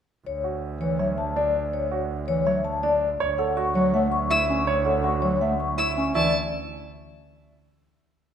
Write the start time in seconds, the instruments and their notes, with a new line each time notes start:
0.26 double bass D2, vibraphone C#5
0.44 grand piano F#4
0.81 bass clarinet E3, vibraphone C#5
0.99 bass clarinet F#3, grand piano C#5, vibraphone E5
1.18 vibraphone A5
1.36 grand piano D4, vibraphone D5
1.73 vibraphone C#5
1.92 grand piano F#4
2.28 bass clarinet E3, vibraphone C#5
2.46 bass clarinet F#3, grand piano C#5, vibraphone E5
2.65 vibraphone A5
2.83 grand piano D4, vibraphone D5
3.20 double bass D2, grand piano C#5, vibraphone C#5
3.38 grand piano A4, vibraphone F#5
3.57 grand piano F#4, vibraphone C#6
3.75 bass clarinet F#3, vibraphone C#5
3.94 bass clarinet A3, grand piano E5, vibraphone F#5
4.12 vibraphone C#6
4.30 grand piano E4, vibraphone E5, violin E6
4.49 bass clarinet C#4, vibraphone C#6
4.67 grand piano C#5, vibraphone C#5
4.85 grand piano A4, vibraphone F#5
5.04 grand piano F#4, vibraphone C#6
5.22 bass clarinet F#3, vibraphone C#5
5.41 bass clarinet A3, grand piano E5, vibraphone F#5
5.60 vibraphone C#6
5.78 grand piano E4, vibraphone E5, violin E6
5.97 bass clarinet C#4, vibraphone C#6
6.15 double bass D2, bass clarinet E3, grand piano E4, vibraphone D5, violin A5